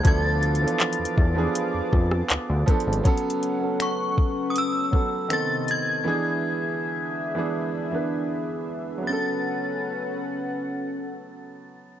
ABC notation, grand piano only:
X:1
M:4/4
L:1/16
Q:1/4=80
K:A
V:1 name="Grand piano"
[=F,B,DA]2 z [E,F,B,DA]3 z [F,B,DG]6 z [F,B,DA]2 | [F,B,CA]2 z [F,B,CA]6 z [F,B,CA]2 [^D,B,=CA]3 z | [E,B,DG]6 z [E,B,DG]2 z [E,B,DB]4- [E,B,DB] z | [F,B,CA]16 |]